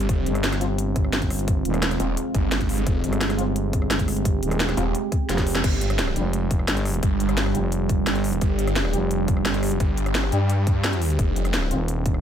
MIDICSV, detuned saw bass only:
0, 0, Header, 1, 2, 480
1, 0, Start_track
1, 0, Tempo, 346821
1, 126, Time_signature, 4, 2, 24, 8
1, 16899, End_track
2, 0, Start_track
2, 0, Title_t, "Detuned saw bass"
2, 0, Program_c, 0, 39
2, 126, Note_on_c, 0, 29, 103
2, 347, Note_off_c, 0, 29, 0
2, 2766, Note_on_c, 0, 27, 94
2, 2987, Note_off_c, 0, 27, 0
2, 3246, Note_on_c, 0, 31, 99
2, 3947, Note_off_c, 0, 31, 0
2, 3966, Note_on_c, 0, 29, 105
2, 4187, Note_off_c, 0, 29, 0
2, 6606, Note_on_c, 0, 27, 98
2, 6827, Note_off_c, 0, 27, 0
2, 7805, Note_on_c, 0, 31, 104
2, 8507, Note_off_c, 0, 31, 0
2, 9726, Note_on_c, 0, 31, 103
2, 10427, Note_off_c, 0, 31, 0
2, 11646, Note_on_c, 0, 31, 104
2, 12347, Note_off_c, 0, 31, 0
2, 13565, Note_on_c, 0, 31, 105
2, 14266, Note_off_c, 0, 31, 0
2, 14286, Note_on_c, 0, 43, 95
2, 15467, Note_off_c, 0, 43, 0
2, 15486, Note_on_c, 0, 29, 108
2, 16187, Note_off_c, 0, 29, 0
2, 16899, End_track
0, 0, End_of_file